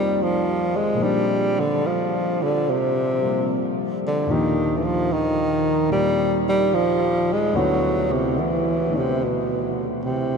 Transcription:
Already playing: F2 C3 D#3 F3 G3 A#3 C4 D#4 F4 G4 A#4
0.22 F3
0.76 G#3
0.94 A#2 F3
1.00 G3 C4 D4
1.06 G4
1.60 D3
1.87 F3
2.42 D3
2.70 C3
3.21 F3 G3 A#3 C4 F4
4.07 D3
4.26 D#2 A#2 F3 D4
4.31 D#3 G4
4.77 E3
4.85 F3
5.13 D#3
5.89 A#2 D#3 G3 C4 F4
6.49 G3
6.74 F3
7.33 G#3
7.54 D2 D3 F#3 B3 E4 F#4
8.12 C3
8.39 E3
8.89 D3 A3 B3 D4 E4
8.97 C3
9.24 B2
10.04 C3

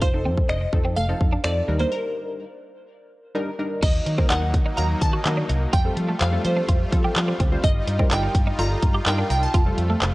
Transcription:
Already playing: F1
0.01 F4 C5, kick
0.14 F3 C4 D#4 A4, muted clean electric guitar stroke
0.25 F2 C4
0.38 kick
0.49 F1 D4 D#5, finger snap
0.61 muted clean electric guitar stroke
0.73 F2 F3 C4 D#4 A4, kick
0.85 C4
0.96 F1 A3 F5
1.09 F3 C4 D#4 A4, muted clean electric guitar stroke
1.21 F2, kick
1.33 D4
1.44 F2 F3 C4 D#4 A4 D5, finger snap
1.68 D#2 G3 D4 D#4 A#4, muted clean electric guitar stroke
1.79 A#3 C5
1.92 A#4
3.35 G3 D4 D#4 A#4
3.59 G3 D4 D#4 A#4
3.82 D#2 F#3 A#3 D#4 D#5, kick, closed hi-hat, crash
4.06 D#3, muted clean electric guitar stroke, closed hi-hat
4.18 F#3 A#3 C4 D#4 A#4, kick
4.30 D#2 D4 F#5, clap, closed hi-hat
4.42 muted clean electric guitar stroke
4.54 D#3, kick, closed hi-hat
4.66 D#4
4.77 D#2 F#3 A#3 D#4 F4 A#4 A#5, closed hi-hat
5.01 D#3 A5, muted clean electric guitar stroke, kick, closed hi-hat
5.13 F#4
5.25 D#3 F#3 A#3 D#4 A#4, muted clean electric guitar stroke, clap, closed hi-hat
5.37 D4
5.49 C2 D#4, closed hi-hat
5.73 F2 G3 A3 F4 G5, kick, closed hi-hat
5.85 G3 C4 F4 A4
5.97 F3, muted clean electric guitar stroke, closed hi-hat
6.09 A3
6.21 F2 C4 F5, clap, closed hi-hat
6.32 G3 C4 F4 A4, muted clean electric guitar stroke
6.45 F3 C5, closed hi-hat
6.57 D4
6.68 F2 F4, kick, closed hi-hat
6.92 F3 G3 C4 F4 A4, muted clean electric guitar stroke, kick, closed hi-hat
7.04 G4
7.16 F3, muted clean electric guitar stroke, clap, closed hi-hat
7.28 C4
7.40 D2 C4, kick, closed hi-hat
7.51 G3 C4 F4 C5
7.64 G1 D#4 F4 D#5, kick, closed hi-hat
7.87 G2, muted clean electric guitar stroke, closed hi-hat
7.99 G3 C4 D#4 F4 A#4, kick
8.11 G1 D4 G5, clap, closed hi-hat
8.23 muted clean electric guitar stroke
8.35 G2, kick, closed hi-hat
8.47 D#4
8.59 G1 G3 D#4 F4 A4 A#5, closed hi-hat
8.83 G2, muted clean electric guitar stroke, kick, closed hi-hat
8.95 G4
9.06 G2 G3 D#4 F4 A#4 G5, muted clean electric guitar stroke, clap, closed hi-hat
9.18 D4
9.30 C2 D#4 G5, closed hi-hat
9.43 A5
9.54 F1 A3 F4, kick, closed hi-hat
9.66 G3 C4 F4 A4
9.78 F2, muted clean electric guitar stroke, closed hi-hat
9.90 A3
10.01 F1 C4, clap, closed hi-hat

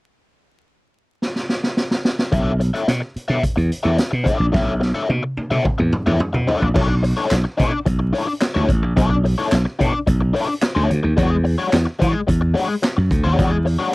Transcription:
1.22 snare
1.36 snare
1.49 snare
1.63 snare
1.77 snare
1.91 snare
2.05 snare
2.19 snare
2.32 B1 D4 A4 C#5 E5, kick, closed hi-hat
2.59 muted overdriven electric guitar stroke, closed hi-hat
2.74 D4 A4 C#5 E5, closed hi-hat
2.87 B2, muted overdriven electric guitar stroke, snare, closed hi-hat
3.00 muted overdriven electric guitar stroke
3.16 muted slap bass stroke, closed hi-hat
3.28 B2 D4 A4 C#5 E5
3.42 muted overdriven electric guitar stroke, muted slap bass stroke, kick, closed hi-hat
3.56 E2, muted overdriven electric guitar stroke, closed hi-hat
3.72 closed hi-hat
3.83 E2 D4 A4 C#5 E5
3.97 muted overdriven electric guitar stroke, snare, closed hi-hat
4.11 B2, muted overdriven electric guitar stroke
4.24 D4 A4 C#5 E5, kick, closed hi-hat
4.39 A#1, muted overdriven electric guitar stroke
4.52 B1 D4 A4 C#5 E5, kick, snare
4.80 muted overdriven electric guitar stroke, snare
4.95 D4 A4 C#5 E5
5.08 B2, muted overdriven electric guitar stroke, high tom
5.23 muted overdriven electric guitar stroke
5.37 muted slap bass stroke, high tom
5.51 B2 D4 A4 C#5 E5
5.64 muted overdriven electric guitar stroke, muted slap bass stroke, kick, mid tom
5.78 E2, muted overdriven electric guitar stroke, mid tom
5.92 mid tom
6.06 E2 D4 A4 C#5 E5, mid tom
6.19 muted overdriven electric guitar stroke, mid tom
6.33 B2, muted overdriven electric guitar stroke, floor tom
6.47 D4 A4 C#5 E5, floor tom
6.61 A#1, muted overdriven electric guitar stroke, floor tom
6.74 B1 D4 E4 A4 C#5, kick, crash
6.88 muted overdriven electric guitar stroke
7.03 muted overdriven electric guitar stroke, open hi-hat
7.17 D4 E4 A4 C#5
7.31 B1, snare, clap, closed hi-hat
7.44 muted overdriven electric guitar stroke
7.57 B2 D4 E4 A4 C#5, kick, closed hi-hat
7.72 muted overdriven electric guitar stroke
7.86 B1, muted overdriven electric guitar stroke, kick, closed hi-hat
7.99 muted overdriven electric guitar stroke
8.13 D4 E4 A4 C#5, open hi-hat
8.27 muted overdriven electric guitar stroke
8.41 muted overdriven electric guitar stroke, snare, clap, closed hi-hat
8.54 D2 D4 E4 A4 C#5
8.68 A1, muted overdriven electric guitar stroke, kick, closed hi-hat
8.82 A#1, muted overdriven electric guitar stroke
8.97 B1 D4 E4 A4 C#5, kick, closed hi-hat
9.10 muted overdriven electric guitar stroke
9.24 muted overdriven electric guitar stroke, open hi-hat
9.38 D4 E4 A4 C#5
9.52 B1, snare, clap, closed hi-hat
9.65 muted overdriven electric guitar stroke
9.79 B2 D4 E4 A4 C#5, kick, closed hi-hat
9.93 muted overdriven electric guitar stroke
10.07 B1, muted overdriven electric guitar stroke, kick, closed hi-hat
10.21 muted overdriven electric guitar stroke
10.34 D4 E4 A4 C#5, open hi-hat
10.48 muted overdriven electric guitar stroke
10.62 muted overdriven electric guitar stroke, snare, clap, closed hi-hat
10.75 D2 D4 E4 A4 C#5
10.89 D2, muted overdriven electric guitar stroke, closed hi-hat
11.03 D#2, muted overdriven electric guitar stroke
11.17 E2 G#3 D4 F#4 C#5, kick, closed hi-hat
11.30 muted overdriven electric guitar stroke
11.44 muted overdriven electric guitar stroke, open hi-hat
11.58 G#3 D4 F#4 C#5
11.73 E2, snare, clap, closed hi-hat
11.86 muted overdriven electric guitar stroke
11.99 E3 G#3 D4 F#4 C#5, kick, closed hi-hat
12.14 muted overdriven electric guitar stroke
12.27 E2, muted overdriven electric guitar stroke, kick, closed hi-hat
12.41 muted overdriven electric guitar stroke
12.54 G#3 D4 F#4 C#5, open hi-hat
12.69 muted overdriven electric guitar stroke
12.82 muted overdriven electric guitar stroke, snare, clap, closed hi-hat
12.97 F#2, muted overdriven electric guitar stroke
13.11 D2, kick, closed hi-hat
13.24 D#2 G#3 D4 F#4 C#5
13.37 E2 G#3 D4 F#4 C#5, kick, closed hi-hat
13.51 muted overdriven electric guitar stroke
13.65 muted overdriven electric guitar stroke, open hi-hat
13.79 G#3 D4 F#4 C#5

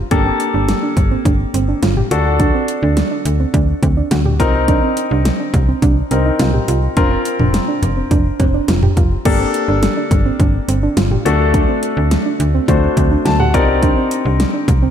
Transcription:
0.11 G1 A#3 D4 G4 A4, kick, closed hi-hat
0.26 C4
0.40 closed hi-hat
0.54 G1 D4
0.69 snare, closed hi-hat
0.83 D4
0.97 G1, kick, closed hi-hat
1.11 C4
1.25 G1 D4, kick, closed hi-hat
1.54 G1 C4, closed hi-hat
1.68 D4
1.83 G1 F4, snare, closed hi-hat
1.97 G4, mid tom
2.11 D2 D4 F#4 A4, closed hi-hat
2.40 D4, kick, closed hi-hat
2.54 C4
2.68 closed hi-hat
2.83 D2 D4
2.97 snare, closed hi-hat
3.11 D4
3.25 D2, closed hi-hat
3.40 C4
3.54 D2 D4, kick, closed hi-hat
3.83 D2 C4, kick, closed hi-hat
3.97 D4
4.11 D2 F#4, snare, closed hi-hat
4.25 G4, mid tom
4.40 C2 C4 D#4 F4 A#4, kick, closed hi-hat
4.68 D4, kick, closed hi-hat
4.83 C4
4.97 closed hi-hat
5.11 C2 D4
5.25 snare, closed hi-hat
5.40 D4
5.54 C2, kick, closed hi-hat
5.68 C4
5.82 C2 D4, kick, closed hi-hat
6.11 C2 C4 D#4 A#4, closed hi-hat
6.25 D#4
6.39 C2 F4, snare, closed hi-hat
6.54 G4, mid tom
6.68 C2 F4, closed hi-hat
6.97 F1 C4 D4 F4 A#4, kick, closed hi-hat
7.11 C4
7.25 closed hi-hat
7.40 F1 D4, mid tom
7.54 snare, closed hi-hat
7.68 D4
7.83 F1, closed hi-hat, mid tom
7.97 C4
8.11 F1 D4, kick, closed hi-hat
8.40 F1 C4, kick, closed hi-hat, cowbell
8.54 D4
8.68 F1 F4, snare, closed hi-hat
8.83 G4, mid tom
8.97 F1 F4, kick, closed hi-hat
9.25 G1 A#3 D4 G4 A4, kick, closed hi-hat, crash
9.40 C4
9.54 closed hi-hat
9.68 G1 D4
9.83 snare, closed hi-hat
9.97 D4
10.11 G1, kick, closed hi-hat
10.26 C4
10.40 G1 D4, kick, closed hi-hat
10.68 G1 C4, closed hi-hat
10.83 D4
10.97 G1 F4, snare, closed hi-hat
11.11 G4, mid tom
11.25 D2 A3 D4 F#4 A4, closed hi-hat
11.54 D4, kick, closed hi-hat
11.69 C4
11.83 closed hi-hat
11.97 D2 D4
12.11 snare, closed hi-hat
12.26 D4
12.40 D2, closed hi-hat
12.54 C4
12.68 D2 A3 D4 F#4 C5, kick, closed hi-hat
12.97 D2 C4, kick, closed hi-hat
13.11 D4
13.25 D2 F#4 A5, snare, closed hi-hat
13.40 G4 F#5, mid tom
13.54 C2 C4 D#4 F4 G4 A#4 D5, kick, closed hi-hat
13.83 D4, kick, closed hi-hat
13.97 C4
14.11 closed hi-hat
14.25 C2 D4
14.40 snare, closed hi-hat
14.54 D4
14.68 C2, kick, closed hi-hat
14.82 C4

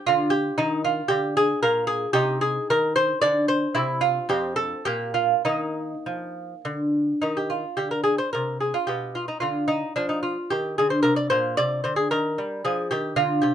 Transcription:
Already playing: C4
0.07 D3 F4
0.30 G4
0.58 D#3 D#4
0.85 F4
1.08 D3 G4
1.37 G#4
1.62 A#2 A#4
1.87 G#4
2.13 C3 D#4 G4
2.41 G#4
2.70 D#3 A#4
2.96 C5
3.21 D3 D5
3.48 C5
3.75 C3 C4 E4
4.01 F4
4.29 F2 C4 G4
4.56 A4
4.85 A#2 A#3 G4
5.14 F4
5.45 D#3 A#3 D#4
6.06 F3
6.65 D3
7.22 D#3 D#4
7.37 G4
7.50 F4
7.77 D3 G4
7.91 A#4
8.04 G#4
8.18 C5
8.33 C3 A#4
8.60 G#4
8.74 F4
8.87 B2 G4
9.15 F4
9.28 D#4
9.40 D3 F4
9.68 D#4
9.96 F3 D4
10.09 D#4
10.23 F4
10.50 D#3 G4
10.78 D3 G#4
10.90 C5
11.03 C3 A#4
11.16 D5
11.30 A#2 C5
11.57 C3 D5
11.84 D3 C5
11.96 G#4
12.11 D#3 A#4
12.38 G3
12.65 F3 G#4
12.91 D#3 G4
13.16 D3 F4
13.42 C3 G4

